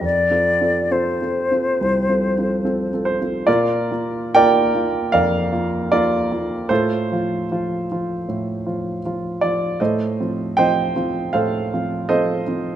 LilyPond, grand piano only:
\new Staff \with { instrumentName = "Grand piano" } { \time 4/4 \key bes \major \tempo 4 = 77 << { r2. r8 c''8 | <f' bes' d''>4 <bes' d'' g''>4 <bes' d'' f''>4 <f' bes' d''>4 | <f' a' c''>2. r8 d''8 | <a' c'' ees''>4 <c'' ees'' g''>4 <a' c'' f''>4 <a' c'' ees''>4 | } \\ { \tuplet 3/2 { f,8 <c' f' a'>8 <c' f' a'>8 <c' f' a'>8 <c' f' a'>8 <c' f' a'>8 c,8 <c' f' a'>8 <c' f' a'>8 <c' f' a'>8 <c' f' a'>8 <c' f' a'>8 } | bes,8 <bes f'>8 <bes f'>8 <bes f'>8 f,8 <bes f'>8 bes8 <bes f'>8 | a,8 <f f'>8 <f f'>8 <f f'>8 a,8 <f f'>8 <f f'>8 <f f'>8 | a,8 <f c' f'>8 <f c' f'>8 <f c' f'>8 a,8 <f c' f'>8 <f c' f'>8 <f c' f'>8 | } >> }